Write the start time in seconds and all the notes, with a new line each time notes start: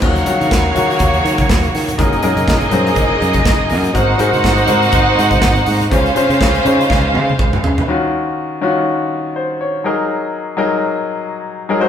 Already playing: C5
0.01 D#2 C#3 D#3 F#3 A#3 C#4 F4 F#4 C#5 F5, kick, crash
0.16 closed hi-hat
0.26 D#3 C#4 F4 F#4, closed hi-hat, muted conga
0.41 D#3, closed hi-hat, high conga
0.51 D#2, kick, snare
0.75 D#3 C#4 F4 F#4, closed hi-hat, high conga, low conga
0.90 closed hi-hat
0.99 D#2, kick, closed hi-hat, muted conga, high conga
1.14 closed hi-hat
1.25 D#3, closed hi-hat, muted conga
1.38 kick, closed hi-hat, high conga
1.49 D#2, kick, snare
1.63 closed hi-hat, low conga
1.74 D#3, snare, open hi-hat, muted conga
1.88 closed hi-hat, low conga
1.98 F#1 A#2 F#3 G#3 A#3 D#4 G#4 A#4 D#5, kick, closed hi-hat, muted conga
2.13 closed hi-hat
2.22 F#2 F#3 D#4 G#4 A#4, closed hi-hat
2.36 F#2, closed hi-hat, high conga
2.47 F#1, kick, snare, muted conga
2.61 closed hi-hat
2.71 F#2 F#3 D#4 G#4 C5, closed hi-hat, high conga, low conga
2.87 closed hi-hat
2.95 F#1, kick, closed hi-hat, high conga
3.20 F#2, closed hi-hat, muted conga
3.33 kick, closed hi-hat, high conga
3.45 F#1, kick, snare, muted conga
3.59 low conga
3.70 F#2, open hi-hat, muted conga
3.83 closed hi-hat, low conga
3.94 G#1 C3 G#3 A#3 D#4 F#4 A#4 C5 F#5, kick, closed hi-hat, muted conga
4.18 G#2 G#3 F#4 A#4 C5, closed hi-hat, muted conga
4.32 G#2, closed hi-hat, high conga
4.43 G#1, kick, snare, muted conga
4.57 closed hi-hat
4.67 G#2 G#3 F#4 A#4 C5, closed hi-hat, muted conga, high conga, low conga
4.83 closed hi-hat
4.92 G#1, kick, closed hi-hat, high conga
5.17 G#2, closed hi-hat, muted conga
5.31 kick, closed hi-hat, high conga
5.42 G#1, kick, snare
5.55 closed hi-hat, low conga
5.66 G#2, open hi-hat
5.80 closed hi-hat, low conga
5.91 C#2 C#3 C#4 F4 C5 F5, kick, closed hi-hat
6.06 closed hi-hat
6.15 C#3 C#4 F4 C5, closed hi-hat
6.29 C#3, closed hi-hat, high conga
6.41 C#2, kick, snare, muted conga
6.55 closed hi-hat
6.65 C#3 C#4 D#4 C5, closed hi-hat, high conga, low conga
6.72 F4
6.81 closed hi-hat
6.90 C#2, kick, snare, muted conga, high conga
7.14 C#3, high tom, muted conga
7.29 high conga
7.39 C#2, kick, mid tom, muted conga
7.53 mid tom, low conga
7.64 C#3, floor tom
7.78 floor tom, low conga
7.88 D#3 C#4 F4 F#4
8.61 D#3 C#4 F4 F#4
9.36 C5
9.61 C#5
9.84 F#3 D#4 G#4 A#4
10.57 F#3 D#4 G#4 A#4
11.69 F#3 D#4 G#4 A#4
11.80 G#3 F#4 A#4 C5